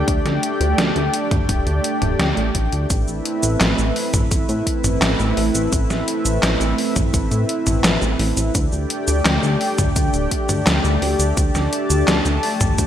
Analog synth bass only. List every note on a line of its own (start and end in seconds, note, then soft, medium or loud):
0.08 0.21 D2 loud
0.25 0.39 D2 medium
0.61 0.74 D2 medium
0.78 0.92 D2 loud
0.96 1.09 D2 medium
1.31 1.45 D2 medium
1.49 1.62 D1 loud
1.67 1.80 D2 medium
2.02 2.15 D1 medium
2.20 2.33 D2 medium
2.37 2.51 A1 medium
2.55 2.68 A1 medium
2.73 2.86 D2 medium
2.90 3.04 A1 loud
3.08 3.21 A1 medium
3.43 3.57 A1 medium
3.61 3.74 A1 loud
3.78 3.92 A1 medium
4.14 4.27 A1 medium
4.31 4.45 A1 loud
4.49 4.62 A2 medium
4.84 4.98 A1 medium
5.02 5.15 A1 loud
5.20 5.33 A1 medium
5.37 5.51 A1 loud
5.55 5.68 A1 medium
5.72 5.86 A1 loud
5.90 6.04 A1 medium
6.25 6.39 A1 medium
6.43 6.57 A1 loud
6.61 6.74 A1 medium
6.96 7.10 A1 medium
7.14 7.27 A1 loud
7.31 7.45 A2 medium
7.67 7.80 A1 medium
7.84 7.98 A1 loud
8.02 8.15 A1 medium
8.20 8.33 A1 loud
8.37 8.51 A1 medium
8.55 8.68 D2 loud
8.73 8.86 D2 medium
9.08 9.21 D2 medium
9.25 9.39 D2 loud
9.43 9.57 D2 medium
9.78 9.92 D2 medium
9.96 10.10 D2 loud
10.14 10.27 D1 medium
10.49 10.62 D2 medium
10.66 10.80 D2 loud
10.84 10.98 D2 medium
11.02 11.15 D2 loud
11.19 11.33 D2 medium
11.37 11.51 D2 loud
11.55 11.68 D2 medium
11.90 12.04 D2 medium
12.08 12.21 D2 loud
12.25 12.39 D2 medium
12.61 12.74 D2 medium
12.78 12.87 D2 loud